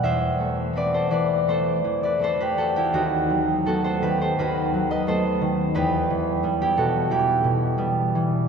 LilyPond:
<<
  \new Staff \with { instrumentName = "Harp" } { \time 4/4 \key e \minor \tempo 4 = 84 <c'' e'' fis''>4 <b' d''>16 <a' c''>16 <b' d''>8 <a' c''>8. <b' d''>16 <a' c''>16 <g' b'>16 <fis' a'>16 <e' g'>16 | <dis' fis'>4 <fis' a'>16 <a' c''>16 <g' b'>16 <a' c''>16 <fis' b'>8. <b' dis''>16 <a' c''>4 | <g' b'>4~ <g' b'>16 <e' g'>16 <fis' a'>8 <e' g'>2 | }
  \new Staff \with { instrumentName = "Harp" } { \clef bass \time 4/4 \key e \minor <e, e'>8 a8 <a c'>8 e8 a8 e8 <a c'>8 a8 | dis,8 fis8 <a b>8 dis8 dis,8 fis8 <a b>8 dis8 | e,8 e8 <g b>8 b,8 e8 b,8 <g b>8 e8 | }
>>